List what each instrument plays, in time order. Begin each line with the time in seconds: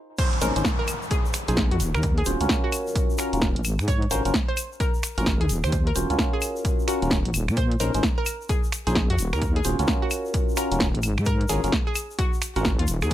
0.18 synth pluck C5, kick, closed hi-hat, crash, downlifter, shaker
0.33 closed hi-hat
0.41 wobble bass A#1, tine electric piano C#4 D#4 G#4 C5, synth pluck A#4, open hi-hat, shaker
0.56 wobble bass G#1, tine electric piano C#4 D#4 G#4 C5, closed hi-hat, shaker
0.65 kick, snare, shaker
0.79 synth pluck A#4
0.88 open hi-hat, claves, shaker
1.02 shaker
1.11 synth pluck G#4, kick, closed hi-hat, shaker
1.25 shaker
1.34 finger snap, open hi-hat, shaker
1.48 wobble bass A#1, tine electric piano C#4 D#4 G#4 C5, synth pluck G#4, closed hi-hat, shaker
1.57 kick, snare, shaker
1.71 wobble bass F2, synth pluck F#4, closed hi-hat
1.80 wobble bass D#1, open hi-hat, shaker
1.95 wobble bass D#2, synth pluck A#4, finger snap, shaker
2.03 kick, closed hi-hat, shaker
2.18 synth pluck G#4, closed hi-hat
2.25 wobble bass D#1, tine electric piano C#4 F4 F#4 C5, open hi-hat, shaker
2.40 wobble bass C#2, tine electric piano C#4 F4 F#4 A#4, closed hi-hat, shaker
2.49 kick, snare, shaker
2.64 synth pluck F#4
2.72 open hi-hat, claves, shaker
2.87 shaker
2.95 kick, closed hi-hat, shaker
3.10 shaker
3.18 tine electric piano C#4 F4 F#4 A#4, synth pluck A#4, finger snap, open hi-hat, shaker
3.33 wobble bass D#1, tine electric piano C#4 F4 F#4 A#4, closed hi-hat, shaker
3.41 kick, snare, shaker
3.56 wobble bass A#1, closed hi-hat
3.64 wobble bass G#1, open hi-hat, claves, shaker
3.79 wobble bass G#2, finger snap, shaker
3.88 synth pluck C#5, kick, closed hi-hat, shaker
4.02 closed hi-hat
4.11 wobble bass G#1, tine electric piano C#4 F4 F#4 A#4, synth pluck C5, open hi-hat, shaker
4.25 wobble bass F#1, tine electric piano C#4 F4 F#4 A#4, closed hi-hat, shaker
4.34 kick, snare, shaker
4.48 synth pluck C5
4.57 open hi-hat, claves, shaker
4.72 shaker
4.80 synth pluck A#4, kick, closed hi-hat, shaker
4.94 shaker
5.03 finger snap, open hi-hat, shaker
5.18 wobble bass G#1, tine electric piano C#4 F4 F#4 A#4, synth pluck A#4, closed hi-hat, shaker
5.26 kick, snare, shaker
5.41 wobble bass D#2, synth pluck G#4, closed hi-hat
5.49 wobble bass D#1, open hi-hat, shaker
5.64 wobble bass D#2, synth pluck C5, finger snap, shaker
5.72 kick, closed hi-hat, shaker
5.87 synth pluck A#4, closed hi-hat
5.95 wobble bass D#1, tine electric piano C#4 F4 F#4 C5, open hi-hat, shaker
6.10 wobble bass C#2, tine electric piano C#4 F4 F#4 A#4, closed hi-hat, shaker
6.19 kick, snare, shaker
6.33 synth pluck G#4
6.42 open hi-hat, claves, shaker
6.56 shaker
6.65 kick, closed hi-hat, shaker
6.79 shaker
6.88 tine electric piano C#4 F4 F#4 A#4, synth pluck F#4, finger snap, open hi-hat, shaker
7.02 wobble bass D#1, tine electric piano C#4 F4 F#4 A#4, closed hi-hat, shaker
7.11 kick, snare, shaker
7.25 wobble bass A#1, closed hi-hat
7.34 wobble bass D#1, open hi-hat, claves, shaker
7.48 wobble bass A#2, finger snap, shaker
7.57 synth pluck C5, kick, closed hi-hat, shaker
7.71 closed hi-hat
7.80 wobble bass A#1, tine electric piano C#4 D#4 G#4 C5, synth pluck A#4, open hi-hat, shaker
7.94 wobble bass G#1, tine electric piano C#4 D#4 G#4 C5, closed hi-hat, shaker
8.03 kick, snare, shaker
8.18 synth pluck A#4
8.26 open hi-hat, claves, shaker
8.41 shaker
8.49 synth pluck G#4, kick, closed hi-hat, shaker
8.64 shaker
8.72 finger snap, open hi-hat, shaker
8.87 wobble bass A#1, tine electric piano C#4 D#4 G#4 C5, synth pluck G#4, closed hi-hat, shaker
8.95 kick, snare, shaker
9.10 wobble bass F2, synth pluck F#4, closed hi-hat
9.18 wobble bass D#1, open hi-hat, shaker
9.33 wobble bass D#2, synth pluck A#4, finger snap, shaker
9.42 kick, closed hi-hat, shaker
9.56 synth pluck G#4, closed hi-hat
9.64 wobble bass D#1, tine electric piano C#4 F4 F#4 C5, open hi-hat, shaker
9.79 wobble bass C#2, tine electric piano C#4 F4 F#4 A#4, closed hi-hat, shaker
9.87 kick, snare, shaker
10.02 synth pluck F#4
10.11 open hi-hat, claves, shaker
10.26 shaker
10.34 kick, closed hi-hat, shaker
10.49 shaker
10.57 tine electric piano C#4 F4 F#4 A#4, synth pluck A#4, finger snap, open hi-hat, shaker
10.71 wobble bass D#1, tine electric piano C#4 F4 F#4 A#4, closed hi-hat, shaker
10.80 kick, snare, shaker
10.95 wobble bass A#1, closed hi-hat
11.03 wobble bass G#1, open hi-hat, claves, shaker
11.18 wobble bass G#2, finger snap, shaker
11.25 synth pluck A#4, kick, closed hi-hat, shaker
11.41 closed hi-hat
11.49 wobble bass G#1, tine electric piano C#4 F4 F#4 A#4, synth pluck G#4, open hi-hat, shaker
11.64 wobble bass F#1, tine electric piano C#4 F4 F#4 A#4, closed hi-hat, shaker
11.72 kick, snare, shaker
11.87 synth pluck G#4
11.95 open hi-hat, claves, shaker
12.10 shaker
12.19 synth pluck F#4, kick, closed hi-hat, shaker
12.33 shaker
12.42 finger snap, open hi-hat, shaker
12.56 wobble bass G#1, tine electric piano C#4 F4 F#4 A#4, synth pluck F#4, closed hi-hat, shaker
12.65 kick, snare, shaker
12.79 wobble bass D#2, synth pluck F4, closed hi-hat
12.87 wobble bass D#1, open hi-hat, shaker
13.02 wobble bass D#2, synth pluck G#4, finger snap, shaker
13.11 shaker